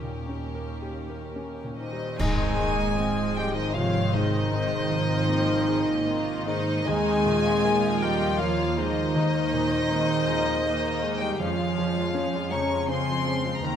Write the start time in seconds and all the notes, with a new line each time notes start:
Already playing: D#2 D#3 C#4 D#4 G4 A#4
0.02 A#2
0.29 C#4
0.55 A#4
0.82 G4
1.10 A#4
1.36 C#4
1.64 A#2
1.77 D#3 D#4 C5 D#5
1.93 G3
2.19 G#1 G#2 D#3 G#3 C4 D#4 G#4 D#5 G#5, concert bass drum, crash
2.59 D#3 A#3
2.97 F3 G#3 C4 D#4
3.37 G3 G4 G#4 D#5 G5
3.55 D#3 D#4 C5 D#5
3.74 C3 D#3 F3 G#3 C4 F4 C#5 F5
4.13 D#3 G#3 D#4 C5 D#5
4.51 G#2 D#3 C4
4.90 D#3 F3 C4
5.28 A#3 C4 D#4
5.67 G#4
6.05 D#3 C4 F4
6.46 D#3 G#3 D#4 C5 D#5
6.85 D#2 D#3 G#3 C4 D#4 G#4 D#5 G#5
7.26 A#2 F4
7.63 F3 G#3 A#3
8.01 G3 A#3 G4 A#4 D#5 G5
8.39 F3 A#3 D#4 F4 C#5 F5
8.77 D#3 G#3 A#3 D#4 C5 D#5
9.15 D#2 D#3 A#3 D#4
9.53 A#2 D#4
9.90 D#3 G#3 A#3 C4 D#4 G#4
10.27 F3 G#4 A#4
10.64 D#3 A#3 D#4
11.02 G#3 A#3
11.20 G3 G4 D#5 G5
11.39 F2 F3 G#3 C#4 F4 C#5 F5
11.59 F3 G#3 F4
11.77 F3 G#3 C#4
11.96 F3 G#3 F4
12.14 F3 G#3 C#4
12.33 F3 G#3 F4
12.51 C#3 F3 G#3 C#4 G#4 C#5 A#5 C#6
12.70 F3 G#3 F4
12.88 C#3 F3 G#3 C4 C#4 C5 G#5 C6
13.07 F3 G#3 F4
13.24 F3 G#3 C#4 F4
13.44 F3 G#3 F4
13.62 D#2 D#3 G#3 A#3 C4 A#4 G5 A#5